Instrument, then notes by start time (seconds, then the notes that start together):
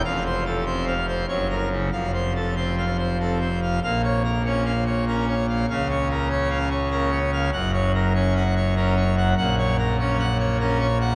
pipe organ
0.05 F1 F2 F5
0.26 C5
0.45 A4
0.66 C4 C5
0.87 F5
1.08 C5
1.28 F#1 F#2 C#5
1.50 A#4
1.71 C#3
1.92 F1 F2 F5
2.14 C5
2.35 A4
2.56 C4 C5
2.78 F5
2.99 C5
3.19 C4 A4
3.41 C5
3.62 F5
3.83 A#1 A#2 F5
4.04 C#5
4.24 A#4
4.45 C#4 C#5
4.66 F5
4.86 C#5
5.07 C#4 A#4
5.28 C#5
5.49 F5
5.69 C#2 C#3 F5
5.90 C#5
6.10 A#4
6.30 C#4 C#5
6.50 F5
6.71 C#5
6.91 C#4 A#4
7.12 C#5
7.33 F5
7.53 F#1 F#2 F#5
7.73 C#5
7.95 A#4
8.15 C#4 C#5
8.36 F#5
8.56 C#5
8.76 C#4 A#4
8.97 C#5
9.17 F#5
9.37 A#1 A#2 F#5
9.58 C#5
9.78 A#4
9.99 C#4 C#5
10.19 F#5
10.39 C#5
10.60 C#4 A#4
10.80 C#5
11.01 F#5